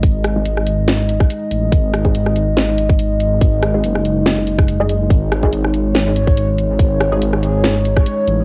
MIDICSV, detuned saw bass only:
0, 0, Header, 1, 2, 480
1, 0, Start_track
1, 0, Tempo, 422535
1, 39, Time_signature, 4, 2, 24, 8
1, 9592, End_track
2, 0, Start_track
2, 0, Title_t, "Detuned saw bass"
2, 0, Program_c, 0, 39
2, 36, Note_on_c, 0, 32, 99
2, 500, Note_off_c, 0, 32, 0
2, 518, Note_on_c, 0, 32, 98
2, 1461, Note_off_c, 0, 32, 0
2, 1718, Note_on_c, 0, 33, 92
2, 1941, Note_off_c, 0, 33, 0
2, 1957, Note_on_c, 0, 32, 97
2, 2420, Note_off_c, 0, 32, 0
2, 2440, Note_on_c, 0, 32, 103
2, 3382, Note_off_c, 0, 32, 0
2, 3401, Note_on_c, 0, 32, 91
2, 3862, Note_off_c, 0, 32, 0
2, 3879, Note_on_c, 0, 32, 104
2, 4342, Note_off_c, 0, 32, 0
2, 4363, Note_on_c, 0, 30, 96
2, 5783, Note_off_c, 0, 30, 0
2, 5798, Note_on_c, 0, 32, 104
2, 6261, Note_off_c, 0, 32, 0
2, 6280, Note_on_c, 0, 32, 96
2, 7222, Note_off_c, 0, 32, 0
2, 7237, Note_on_c, 0, 32, 92
2, 7700, Note_off_c, 0, 32, 0
2, 7719, Note_on_c, 0, 32, 101
2, 8181, Note_off_c, 0, 32, 0
2, 8203, Note_on_c, 0, 32, 102
2, 9143, Note_off_c, 0, 32, 0
2, 9399, Note_on_c, 0, 33, 100
2, 9592, Note_off_c, 0, 33, 0
2, 9592, End_track
0, 0, End_of_file